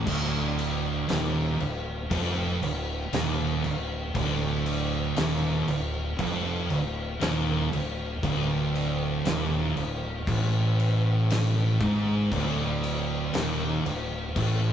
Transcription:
0.07 fingered electric bass D1, distorted electric guitar D2, kick, crash
0.59 crash
1.08 fingered electric bass D#1, distorted electric guitar D#2, snare, crash
1.59 fingered electric bass D1, distorted electric guitar D2, crash
2.10 fingered electric bass F1, distorted electric guitar F2, kick, crash
2.62 fingered electric bass D1, distorted electric guitar D2, crash
3.13 fingered electric bass D#1, distorted electric guitar D#2, snare, crash
3.64 fingered electric bass D1, distorted electric guitar D2, crash
4.14 fingered electric bass D1, distorted electric guitar D2, kick, crash
4.66 crash
5.16 fingered electric bass D#1, distorted electric guitar D#2, snare, crash
5.67 fingered electric bass D1, distorted electric guitar D2, crash
6.18 fingered electric bass F1, distorted electric guitar F2, kick, crash
6.70 fingered electric bass D1, distorted electric guitar D2, crash
7.20 fingered electric bass D#1, distorted electric guitar D#2, snare, crash
7.71 fingered electric bass D1, distorted electric guitar D2, crash
8.23 fingered electric bass D1, distorted electric guitar D2, kick, crash
8.75 crash
9.25 fingered electric bass D#1, distorted electric guitar D#2, snare, crash
9.76 fingered electric bass D1, distorted electric guitar D2, crash
10.27 fingered electric bass A1, distorted electric guitar A2, kick, crash
10.79 crash
11.30 snare, crash
11.80 fingered electric bass G#1, distorted electric guitar G#2, kick, crash
12.32 fingered electric bass D1, distorted electric guitar D2, kick, crash
12.83 crash
13.34 fingered electric bass D#1, distorted electric guitar D#2, snare, crash
13.85 fingered electric bass D1, distorted electric guitar D2, crash
14.35 fingered electric bass A1, distorted electric guitar A2, kick, crash

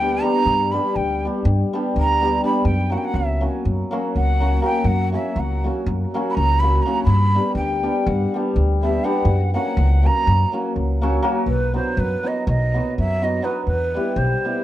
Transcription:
Already playing: upright bass D2, ney G5
0.01 hammered dulcimer G3 B3 D4 G4
0.22 hammered dulcimer G3 B3 D4 G4, ney A#5
0.46 upright bass G2
0.71 hammered dulcimer G3 B3 D4 G4, ney B5
0.95 upright bass D2, ney G5
1.25 hammered dulcimer G3 B3 D4 G4
1.45 upright bass G2
1.73 hammered dulcimer G3 B3 D4 G4
1.96 upright bass D2, ney A#5
2.21 hammered dulcimer G3 B3 D4 G4
2.44 hammered dulcimer G3 B3 D4 G4, ney B5
2.65 upright bass F#2, ney G5
2.90 hammered dulcimer F#3 A#3 C#4 F#4, ney F#5
2.97 ney G5
3.05 ney F#5
3.14 upright bass C#2, ney E5
3.41 hammered dulcimer F#3 A#3 C#4 F#4
3.65 upright bass F#2
3.91 hammered dulcimer F#3 A#3 C#4 F#4
4.15 upright bass C#2, ney F#5
4.40 hammered dulcimer F#3 A#3 C#4 F#4
4.62 hammered dulcimer F#3 A#3 C#4 F#4, ney G5
4.84 upright bass F#2, ney F#5
5.12 hammered dulcimer F#3 A#3 C#4 F#4, ney E5
5.36 upright bass C#2, ney F#5
5.64 hammered dulcimer F#3 A#3 C#4 F#4
5.86 upright bass F#2
6.14 hammered dulcimer F#3 A#3 C#4 F#4
6.30 ney B5
6.35 upright bass C#2, ney A#5
6.59 hammered dulcimer F#3 A#3 C#4, ney B5
6.64 hammered dulcimer F#4
6.82 hammered dulcimer F#3, ney A#5
6.86 hammered dulcimer A#3 C#4 F#4
7.04 upright bass G2, ney B5
7.35 hammered dulcimer G3 B3 D4 G4
7.55 upright bass D2, ney G5
7.83 hammered dulcimer G3 B3 D4 G4
8.07 upright bass G2, ney F#5
8.34 hammered dulcimer G3 B3 D4 G4
8.56 upright bass D2
8.82 hammered dulcimer G3 B3 D4 G4, ney E5
9.04 hammered dulcimer G3 B3 D4 G4, ney F#5
9.25 upright bass F#2
9.53 hammered dulcimer F#3 A#3 C#4 F#4, ney F#5
9.77 upright bass C#2
10.03 hammered dulcimer F#3 A#3 C#4 F#4, ney A#5
10.27 upright bass F#2
10.52 hammered dulcimer F#3 A#3 C#4 F#4
10.76 upright bass C#2
11.01 hammered dulcimer F#3 A#3 C#4 F#4
11.22 hammered dulcimer F#3 A#3 C#4 F#4
11.46 upright bass B1, ney B4
11.74 hammered dulcimer F#3 B3 D#4 F#4, ney C5
11.97 upright bass F#2, ney B4
12.23 hammered dulcimer F#3 B3 D#4 F#4, ney D#5
12.47 upright bass B1, ney D#5
12.74 hammered dulcimer F#3 B3 D#4 F#4
12.98 upright bass F#2, ney E5
13.22 hammered dulcimer F#3 B3 D#4 F#4, ney D#5
13.42 hammered dulcimer F#3 B3 D#4 F#4, ney B4
13.66 upright bass E2, ney B4
13.94 hammered dulcimer G3 B3 E4 G4
14.16 upright bass B1, ney C5
14.45 hammered dulcimer G3 B3 E4 G4

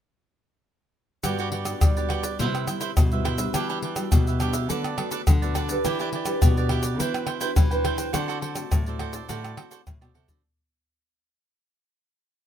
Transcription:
1.23 nylon-string guitar G2 G3 B3 D4 F#4, cavaquinho F#4 G4 B4 D5, pandeiro, tamborim, shaker, surdo
1.38 cavaquinho F#4 G4 B4 D5, pandeiro, shaker
1.52 cavaquinho F#4 G4 B4 D5, pandeiro
1.65 nylon-string guitar B3 D4 F#4, pandeiro, tamborim, shaker
1.81 nylon-string guitar D3 G3, pandeiro, tamborim, shaker, surdo
1.97 nylon-string guitar B3 D4 F#4, cavaquinho G4 B4 D5, pandeiro, shaker
2.09 cavaquinho F#4 G4 B4 D5, pandeiro, tamborim
2.23 cavaquinho G4 B4 D5, pandeiro, shaker
2.39 nylon-string guitar C3 G3 B3 E4, cavaquinho E4 B4 C5 E5, pandeiro, shaker, surdo
2.55 pandeiro, tamborim, shaker
2.67 nylon-string guitar G3 B3 E4, cavaquinho E4 B4 C5 E5, pandeiro, tamborim, shaker
2.80 cavaquinho E4 B4 C5 E5, pandeiro, shaker
2.97 nylon-string guitar G2 B2, pandeiro, tamborim, shaker, surdo
3.11 nylon-string guitar G3 B3 E4, cavaquinho B4 C5 E5, pandeiro, shaker
3.25 cavaquinho E4 B4 C5 E5, pandeiro, tamborim
3.38 nylon-string guitar G3 D4 F#4, cavaquinho B4 C5 E5, pandeiro, shaker
3.54 nylon-string guitar E3, cavaquinho D4 G4 B4 E5, pandeiro, tamborim, shaker, surdo
3.69 cavaquinho D4 G4 B4 E5, pandeiro, shaker
3.82 cavaquinho D4 G4 B4 E5, pandeiro
3.96 nylon-string guitar G3 D4 F#4, pandeiro, tamborim, shaker
4.12 nylon-string guitar B2, pandeiro, tamborim, shaker, surdo
4.27 cavaquinho G4 B4 E5, pandeiro, shaker
4.40 nylon-string guitar G3 D4 F#4, cavaquinho D4 G4 B4 E5, pandeiro, tamborim, shaker
4.53 cavaquinho G4 B4 E5, pandeiro, shaker
4.69 nylon-string guitar D3 A3 B3 F#4, cavaquinho D4 A4 B4 D5, pandeiro, shaker, surdo
4.84 pandeiro, tamborim, shaker
4.97 nylon-string guitar A3 B3 F#4, cavaquinho D4 A4 B4 D5, pandeiro, tamborim
5.11 cavaquinho D4 A4 B4 D5, pandeiro, shaker
5.27 nylon-string guitar D3, pandeiro, tamborim, shaker, surdo
5.42 nylon-string guitar A3 B3 F#4, cavaquinho A4 B4 D5, pandeiro, shaker
5.55 cavaquinho D4 A4 B4 D5, pandeiro, tamborim, shaker
5.69 nylon-string guitar D4 G4 B4, cavaquinho A4 B4 D5, pandeiro, shaker
5.85 nylon-string guitar E3, cavaquinho E4 G4 B4 D5, pandeiro, tamborim, shaker, surdo
5.99 cavaquinho E4 G4 B4 D5, pandeiro, shaker
6.13 cavaquinho E4 G4 B4 D5, pandeiro
6.26 nylon-string guitar D4 G4 B4, pandeiro, tamborim, shaker
6.42 nylon-string guitar B2, pandeiro, tamborim, shaker, surdo
6.57 nylon-string guitar D4 G4 B4, cavaquinho G4 B4 D5, pandeiro, shaker
6.69 cavaquinho E4 G4 B4 D5, pandeiro, tamborim
6.83 cavaquinho G4 B4 D5, pandeiro, shaker
6.99 nylon-string guitar E3 D4 F#4 B4, cavaquinho E4 B4 C5 G5, pandeiro, shaker, surdo
7.14 pandeiro, tamborim, shaker
7.26 cavaquinho E4 B4 C5 G5, pandeiro, tamborim
7.41 nylon-string guitar D4 F#4 B4, cavaquinho E4 B4 C5 G5, pandeiro, shaker
7.56 nylon-string guitar E3, pandeiro, tamborim, shaker, surdo
7.71 nylon-string guitar D4 F#4 B4, cavaquinho B4 C5 G5, pandeiro, shaker
7.84 cavaquinho E4 B4 C5 G5, pandeiro, tamborim
7.98 cavaquinho B4 C5 G5, pandeiro, shaker
8.13 nylon-string guitar D3 A3 C4 F#4, cavaquinho F#4 A4 C5 D5, pandeiro, tamborim, shaker, surdo
8.28 cavaquinho F#4 A4 C5 D5, pandeiro, shaker
8.42 cavaquinho A4 C5 D5, pandeiro
8.55 nylon-string guitar A3 C4 F#4, pandeiro, tamborim, shaker
8.71 nylon-string guitar A2, pandeiro, tamborim, shaker, surdo
8.86 nylon-string guitar A3 C4 F#4, cavaquinho A4 C5 D5, pandeiro, shaker
8.99 cavaquinho F#4 A4 C5 D5, pandeiro, tamborim
9.13 cavaquinho A4 C5 D5, pandeiro, shaker
9.28 nylon-string guitar A2 D3, cavaquinho F#4 A4 C5 D5, pandeiro, shaker, surdo
9.44 pandeiro, tamborim, shaker
9.56 nylon-string guitar A3 C4 F#4, cavaquinho F#4 A4 C5 D5, pandeiro, tamborim
9.71 cavaquinho F#4 A4 C5 D5, pandeiro, shaker
9.86 nylon-string guitar A2, pandeiro, tamborim, shaker, surdo
10.01 nylon-string guitar B2 A3 C4 F#4, cavaquinho A4 C5 D5, pandeiro, tamborim, shaker
10.14 nylon-string guitar C3, cavaquinho F#4 A4 C5 D5, pandeiro
10.27 nylon-string guitar D3 A3 C4 F#4, cavaquinho A4, pandeiro, shaker, surdo

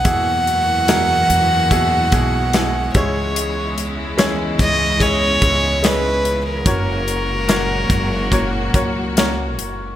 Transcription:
Already playing: violin F#5
0.04 upright bass E2, cello section F#2 E3 A#3, grand piano B2 E3 E4 F#4 G#4, string section E3 G#3 F#4, kick, closed hi-hat
0.47 closed hi-hat
0.88 grand piano B2 E4 F#4 G#4 A#4, snare, closed hi-hat
1.30 upright bass E2, closed hi-hat
1.71 grand piano B2 E4 F#4 G#4, kick, closed hi-hat
2.12 upright bass B1, grand piano B2 E4 F#4 G#4, kick, closed hi-hat
2.53 grand piano B2 E4 F#4 G#4, snare, closed hi-hat
2.94 upright bass C#2, cello section E2 C#3 G#3, string section C#3 E4, grand piano C#3 G#3 C#4 E4 G#4 C#5, violin C#5, kick, closed hi-hat
3.36 closed hi-hat
3.78 closed hi-hat
4.18 grand piano G#3 C#4 E4 G#4 C#5, snare, closed hi-hat
4.59 upright bass C#2, violin D#5, kick, closed hi-hat
5.00 grand piano G#3 C#4 E4 G#4 D#5, violin C#5, kick, closed hi-hat
5.41 upright bass C#2, grand piano G#3 C#4 E4 G#4 C#5, kick, closed hi-hat
5.82 grand piano G#3 C#4 E4 G#4 D#5, violin B4, snare, closed hi-hat
6.25 closed hi-hat
6.47 violin A#4
6.65 upright bass F#1, cello section C#2 A#2 F#3, grand piano A#3 C#4 F#4 A#4 C#5, string section A#3 F#4, kick, closed hi-hat
7.08 closed hi-hat
7.48 grand piano A#3 C#4 F#4 A#4 C#5, snare, closed hi-hat
7.90 upright bass F#1, kick, closed hi-hat
8.32 grand piano A#3 C#4 F#4 A#4 C#5, kick, closed hi-hat
8.74 upright bass C#2, grand piano A#3 C#4 F#4 A#4 C#5, kick, closed hi-hat
9.17 grand piano A#3 C#4 F#4 A#4 C#5, snare, closed hi-hat
9.59 upright bass F#1, closed hi-hat

